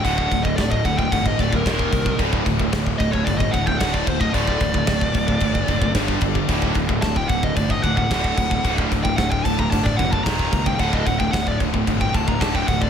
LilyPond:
<<
  \new Staff \with { instrumentName = "Lead electric guitar" } { \time 4/4 \tempo 4 = 112 fis''8. ees''16 d''16 ees''16 fis''16 g''16 fis''16 ees''16 d''16 bes'4~ bes'16 | r4. ees''16 cis''16 d''16 ees''16 fis''16 g''16 fis''16 d''16 c''16 ees''16 | d''2. r4 | r4 a''16 g''16 fis''16 ees''16 d''16 ees''16 fis''16 fis''4~ fis''16~ |
fis''16 r8 g''16 fis''16 g''16 a''16 bes''16 a''16 d''16 fis''16 a''16 bes''8. g''16 | fis''16 ees''16 fis''16 g''16 fis''16 d''16 r8. g''16 a''16 bes''16 a''16 g''16 fis''16 d''16 | }
  \new Staff \with { instrumentName = "Distorted electric guitar" } { \clef bass \time 4/4 <d, a, d>8 <d, a,>16 <d, a,>16 <d, a,>8 <d, a,>16 <d, a,>16 <d, a,>8 <d, a,>16 <d, a,>16 <ees, bes, ees>8 <ees, bes,>16 <ees, bes,>16 | <d, a, d>8 <d, a,>16 <d, a,>16 <d, a,>8 <d, a,>16 <d, a,>16 <d, a,>8 <d, a,>16 <d, a,>16 <d, a, d>8 <d, a,>16 <d, a,>16 | <d, a, d>8 <d, a,>16 <d, a,>16 <d, a,>8 <d, a,>16 <d, a,>16 <d, a,>8 <d, a,>16 <d, a,>16 <g, d g>8 <g, d>16 <g, d>16 | <d, a, d>8 <d, a,>16 <d, a,>16 <d, a,>8 <d, a,>16 <d, a,>16 <d, a,>8 <d, a,>16 <d, a,>16 <d, a, d>8 <d, a,>16 <d, a,>16 |
<d, a, d>8 <d, a,>16 <d, a,>16 <d, a,>8 <d, a,>16 <d, a,>16 <d, a,>8 <d, a,>16 <d, a,>16 <ees, bes, ees>8 <ees, bes,>16 <ees, bes,>16 | <d, a, d>8 <d, a,>16 <d, a,>16 <d, a,>8 <d, a,>16 <d, a,>16 <d, a,>8 <d, a,>16 <d, a,>16 <d, a, d>8 <d, a,>16 <d, a,>16 | }
  \new Staff \with { instrumentName = "Distorted electric guitar" } { \clef bass \time 4/4 <d, a, d>8 <d, a,>16 <d, a,>16 <d, a,>8 <d, a,>16 <d, a,>16 <d, a,>8 <d, a,>16 <d, a,>16 <ees, bes, ees>8 <ees, bes,>16 <ees, bes,>16 | <d, a, d>8 <d, a,>16 <d, a,>16 <d, a,>8 <d, a,>16 <d, a,>16 <d, a,>8 <d, a,>16 <d, a,>16 <d, a, d>8 <d, a,>16 <d, a,>16 | <d, a, d>8 <d, a,>16 <d, a,>16 <d, a,>8 <d, a,>16 <d, a,>16 <d, a,>8 <d, a,>16 <d, a,>16 <g, d g>8 <g, d>16 <g, d>16 | <d, a, d>8 <d, a,>16 <d, a,>16 <d, a,>8 <d, a,>16 <d, a,>16 <d, a,>8 <d, a,>16 <d, a,>16 <d, a, d>8 <d, a,>16 <d, a,>16 |
<d, a, d>8 <d, a,>16 <d, a,>16 <d, a,>8 <d, a,>16 <d, a,>16 <d, a,>8 <d, a,>16 <d, a,>16 <ees, bes, ees>8 <ees, bes,>16 <ees, bes,>16 | <d, a, d>8 <d, a,>16 <d, a,>16 <d, a,>8 <d, a,>16 <d, a,>16 <d, a,>8 <d, a,>16 <d, a,>16 <d, a, d>8 <d, a,>16 <d, a,>16 | }
  \new Staff \with { instrumentName = "Distorted electric guitar" } { \clef bass \time 4/4 <d, a, d>2~ <d, a, d>8 <d, a, d>8 <ees, bes, ees>4 | <d, a, d>2~ <d, a, d>8 <d, a, d>8 <d, a, d>4 | <d, a, d>2~ <d, a, d>8 <d, a, d>8 <g, d g>4 | <d, a, d>2~ <d, a, d>8 <d, a, d>8 <d, a, d>4 |
<d, a, d>2~ <d, a, d>8 <d, a, d>8 <ees, bes, ees>4 | <d, a, d>2~ <d, a, d>8 <d, a, d>8 <d, a, d>4 | }
  \new Staff \with { instrumentName = "Picked electric bass" } { \clef bass \time 4/4 d,,8 d,,8 d,,8 d,,8 g,,8 d,,8 ees,,8 c,8 | d,,8 d,,8 d,,8 d,,8 g,,8 d,,8 d,,8 d,,8 | d,,8 d,,8 d,,8 d,,8 g,,8 fis,,8 g,,8 g,,8 | d,,8 d,,8 d,,8 d,,8 g,,8 d,,8 d,,8 d,,8 |
d,,8 d,,8 d,,8 d,,8 g,,8 fis,,8 ees,,8 cis,8 | d,,8 d,,8 d,,8 d,,8 g,,8 d,,8 d,,8 d,,8 | }
  \new DrumStaff \with { instrumentName = "Drums" } \drummode { \time 4/4 <cymc bd>16 bd16 <cymc bd>16 bd16 <cymc bd sn>16 bd16 <cymc bd>16 bd16 <cymc bd>16 bd16 <cymc bd>16 bd16 <cymc bd sn>16 bd16 <cymc bd>16 bd16 | <cymc bd>16 bd16 <cymc bd>16 bd16 <cymc bd sn>16 bd16 <cymc bd>16 bd16 <cymc bd>16 bd16 <cymc bd>16 bd16 <cymc bd sn>16 bd16 <cymc bd>16 bd16 | <cymc bd>16 bd16 <cymc bd>16 bd16 <cymc bd sn>16 bd16 <cymc bd>16 bd16 <cymc bd>16 bd16 <cymc bd>16 bd16 <cymc bd sn>16 bd16 <cymc bd>16 bd16 | <cymc bd>16 bd16 <cymc bd>16 bd16 <cymc bd sn>16 bd16 <cymc bd>16 bd16 <cymc bd>16 bd16 <cymc bd>16 bd16 <cymc bd sn>16 bd16 <cymc bd>16 bd16 |
<cymc bd>16 bd16 <cymc bd>16 bd16 <cymc bd sn>16 bd16 <cymc bd>16 bd16 <cymc bd>16 bd16 <cymc bd>16 bd16 <cymc bd sn>16 bd16 <cymc bd>16 bd16 | <cymc bd>16 bd16 <cymc bd>16 bd16 <cymc bd sn>16 bd16 <cymc bd>16 bd16 <cymc bd>16 bd16 <cymc bd>16 bd16 <cymc bd sn>16 bd16 <cymc bd>16 bd16 | }
>>